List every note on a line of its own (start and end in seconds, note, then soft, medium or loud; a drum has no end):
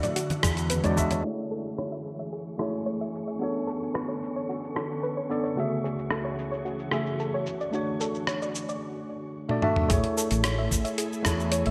0.00 1.23 D3 medium
0.00 0.12 A3 medium
0.00 0.14 A3 medium
0.00 0.15 D4 medium
0.00 1.27 E4 medium
0.00 0.15 F#4 medium
0.00 1.23 F#4 medium
0.00 0.16 D5 medium
0.00 0.10 D5 medium
0.00 1.27 E5 medium
0.00 closed hi-hat soft
0.00 low conga medium
0.00 shaker soft
0.15 1.23 G#3 medium
0.15 1.23 C#4 medium
0.15 0.24 F#4 medium
0.15 closed hi-hat medium
0.15 shaker soft
0.30 closed hi-hat soft
0.30 muted conga medium
0.30 high conga medium
0.30 shaker soft
0.43 0.81 E2 loud
0.43 0.56 G#4 loud
0.43 kick loud
0.43 cross-stick medium
0.43 shaker medium
0.57 closed hi-hat soft
0.57 shaker soft
0.70 0.83 B4 loud
0.70 closed hi-hat medium
0.70 high conga medium
0.70 shaker soft
0.84 1.21 E2 medium
0.84 0.94 G#3 medium
0.84 0.94 D4 medium
0.84 0.95 F#4 medium
0.84 0.96 C#5 medium
0.84 0.95 D5 loud
0.84 closed hi-hat soft
0.84 shaker soft
0.96 1.21 G#3 loud
0.96 1.21 D4 medium
0.96 1.22 F#4 medium
0.96 1.22 E5 loud
0.96 kick medium
0.96 shaker medium
1.11 1.19 C#5 medium
1.11 closed hi-hat soft
1.11 high conga medium
1.11 shaker soft
1.22 3.39 E3 medium
1.22 2.56 A3 medium
1.22 3.39 A3 medium
1.22 8.82 C#4 medium
1.22 2.56 E4 medium
1.22 1.32 G#4 medium
1.22 3.39 G#4 medium
1.22 8.82 C#6 medium
1.27 2.58 C#5 medium
1.51 1.64 A4 medium
1.51 shaker medium
1.78 1.91 C#5 medium
1.78 cross-stick medium
1.92 2.04 E5 medium
2.06 shaker medium
2.19 2.27 E5 medium
2.19 shaker soft
2.32 2.40 G#4 medium
2.32 shaker soft
2.47 shaker soft
2.58 3.37 A3 medium
2.58 3.37 E4 medium
2.58 3.38 G#4 medium
2.58 2.72 A4 medium
2.58 cross-stick medium
2.58 shaker medium
2.62 3.39 C#5 medium
2.74 shaker soft
2.86 2.99 C#5 medium
2.86 shaker soft
3.01 3.13 E5 medium
3.15 shaker medium
3.28 3.35 E5 medium
3.28 shaker soft
3.39 5.55 D3 medium
3.39 5.26 B3 medium
3.39 5.55 B3 medium
3.39 5.27 D4 medium
3.39 3.49 F#4 medium
3.39 5.55 A4 medium
3.39 5.27 A4 medium
3.39 shaker soft
3.43 5.28 C#5 medium
3.67 3.80 A4 medium
3.67 shaker medium
3.83 shaker soft
3.94 4.07 B4 medium
3.94 cross-stick medium
3.94 shaker soft
4.08 4.21 C#5 medium
4.23 shaker medium
4.36 4.43 C#5 medium
4.36 shaker soft
4.49 4.57 F#4 medium
4.49 shaker soft
4.64 shaker soft
4.76 4.88 A4 medium
4.76 cross-stick medium
4.76 shaker medium
4.91 shaker soft
5.03 5.16 B4 medium
5.03 shaker soft
5.17 5.29 C#5 medium
5.29 5.54 B3 medium
5.29 5.54 D4 medium
5.29 5.54 A4 medium
5.29 5.55 D5 medium
5.29 shaker medium
5.43 5.51 C#5 medium
5.43 shaker soft
5.56 7.45 C#2 medium
5.56 6.88 C#3 medium
5.56 7.45 E3 medium
5.56 6.89 A3 medium
5.56 8.78 A3 medium
5.56 5.65 F#4 medium
5.56 7.45 F#4 medium
5.56 6.89 F#4 medium
5.56 7.45 G#4 medium
5.56 6.90 G#4 medium
5.56 shaker soft
5.60 6.90 E5 medium
5.84 5.97 G#4 loud
5.84 shaker medium
5.99 shaker soft
6.11 6.24 A4 medium
6.11 cross-stick medium
6.11 shaker soft
6.25 6.37 C#5 medium
6.39 shaker medium
6.52 6.59 C#5 medium
6.52 shaker soft
6.65 6.73 F#4 medium
6.65 shaker soft
6.79 shaker soft
6.91 7.44 C#3 medium
6.91 7.45 A3 medium
6.91 7.45 F#4 medium
6.91 7.05 G#4 medium
6.91 7.45 G#4 medium
6.91 7.46 E5 medium
6.91 cross-stick medium
6.91 shaker medium
7.06 shaker soft
7.19 7.32 A4 medium
7.19 shaker soft
7.34 7.45 C#5 medium
7.46 8.80 D3 medium
7.46 8.80 F#4 medium
7.46 8.80 C#6 medium
7.46 shaker medium
7.61 7.68 D5 medium
7.61 shaker soft
7.71 9.46 A3 medium
7.71 9.46 D4 medium
7.71 9.47 F#4 medium
7.71 7.81 F#4 medium
7.71 9.48 C#5 medium
7.71 shaker soft
8.00 8.13 A4 loud
8.00 shaker medium
8.15 shaker soft
8.27 8.40 C#5 medium
8.27 cross-stick medium
8.27 shaker soft
8.42 8.54 D5 medium
8.42 shaker soft
8.55 shaker medium
8.69 8.76 D5 medium
8.69 shaker soft
9.49 9.59 A3 medium
9.49 9.59 D4 medium
9.49 9.60 F#4 medium
9.49 9.60 D5 medium
9.49 high tom soft
9.62 9.86 A3 medium
9.62 9.87 D4 medium
9.62 9.87 F#4 medium
9.62 9.87 E5 loud
9.62 mid tom medium
9.76 mid tom medium
9.88 10.02 A1 medium
9.88 11.21 A3 medium
9.88 11.71 A3 medium
9.88 11.22 E4 medium
9.88 11.71 E4 medium
9.88 9.97 G#4 medium
9.88 11.71 G#4 medium
9.88 11.22 G#4 medium
9.88 kick loud
9.88 closed hi-hat medium
9.88 shaker soft
9.93 11.23 C#5 loud
10.04 closed hi-hat soft
10.17 10.30 A4 loud
10.17 shaker medium
10.31 10.67 A1 medium
10.31 closed hi-hat soft
10.31 shaker soft
10.44 10.57 C#5 loud
10.44 cross-stick medium
10.44 closed hi-hat medium
10.44 shaker soft
10.58 10.70 E5 medium
10.71 10.83 A1 medium
10.71 kick medium
10.71 shaker medium
10.85 10.92 E5 medium
10.85 closed hi-hat soft
10.85 shaker soft
10.98 11.05 G#4 medium
10.98 closed hi-hat medium
10.98 shaker soft
11.13 shaker soft
11.22 11.62 E2 loud
11.22 11.71 A3 medium
11.22 11.71 E4 medium
11.22 11.71 G#4 medium
11.22 11.38 A4 loud
11.22 kick loud
11.22 cross-stick medium
11.22 shaker medium
11.27 11.71 C#5 medium
11.40 shaker soft
11.52 11.64 C#5 loud
11.52 closed hi-hat medium
11.52 shaker soft
11.66 11.71 A1 loud
11.66 11.71 E5 medium
11.66 closed hi-hat soft